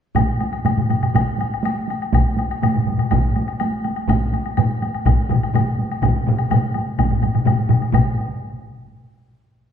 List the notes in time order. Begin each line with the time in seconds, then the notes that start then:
0.15 taiko, taiko low-mid, taiko mid, taiko high, high woodblock
0.29 taiko high
0.41 taiko high, high woodblock
0.53 taiko high, high woodblock
0.65 taiko low-mid, taiko mid, taiko high, high woodblock
0.77 taiko low-mid, taiko mid, taiko high
0.89 taiko low-mid, taiko mid, taiko high, high woodblock
1.02 taiko low-mid, taiko mid, taiko high, high woodblock
1.14 taiko, taiko low-mid, taiko mid, taiko high, high woodblock
1.38 taiko high, high woodblock
1.54 high woodblock
1.63 taiko high, high woodblock
1.77 taiko high
1.88 taiko high, high woodblock
2.00 taiko high, high woodblock
2.13 taiko, taiko low-mid, taiko mid, taiko high, high woodblock
2.25 taiko high
2.37 taiko high, high woodblock
2.50 taiko high, high woodblock
2.62 taiko low-mid, taiko mid, taiko high, high woodblock
2.74 taiko low-mid, taiko mid, taiko high
2.85 taiko low-mid, taiko mid, taiko high
2.98 taiko low-mid, taiko mid, taiko high, high woodblock
3.11 taiko, taiko low-mid, taiko mid, taiko high, high woodblock
3.36 taiko high, high woodblock
3.48 taiko high, high woodblock
3.60 taiko high, high woodblock
3.74 taiko high
3.84 taiko high, high woodblock
3.96 taiko high, high woodblock
4.08 taiko, taiko low-mid, taiko mid, taiko high, high woodblock
4.22 taiko high
4.33 taiko high, high woodblock
4.45 taiko high, high woodblock
4.57 taiko low-mid, taiko mid, taiko high, high woodblock
4.70 taiko high
4.82 taiko high, high woodblock
4.94 taiko high, high woodblock
5.06 taiko, taiko low-mid, taiko mid, taiko high, high woodblock
5.30 taiko low-mid, taiko mid, taiko high, high woodblock
5.43 taiko high, high woodblock
5.54 taiko low-mid, taiko mid, taiko high, high woodblock
5.66 taiko high
5.79 taiko high
5.91 taiko high, high woodblock
6.02 taiko, taiko low-mid, taiko mid, taiko high, high woodblock
6.16 taiko high
6.27 taiko low-mid, taiko mid, taiko high
6.38 taiko high, high woodblock
6.51 taiko low-mid, taiko mid, taiko high, high woodblock
6.64 taiko high
6.74 taiko high, high woodblock
6.87 taiko high
6.98 taiko, taiko low-mid, taiko mid, taiko high, high woodblock
7.10 taiko low-mid, taiko mid
7.22 taiko low-mid, taiko mid, taiko high, high woodblock
7.34 taiko low-mid, taiko mid, taiko high, high woodblock
7.45 taiko low-mid, taiko mid, taiko high, high woodblock
7.59 taiko high
7.69 taiko low-mid, taiko mid, taiko high, high woodblock
7.81 taiko high, high woodblock
7.92 taiko, taiko low-mid, taiko mid, taiko high, high woodblock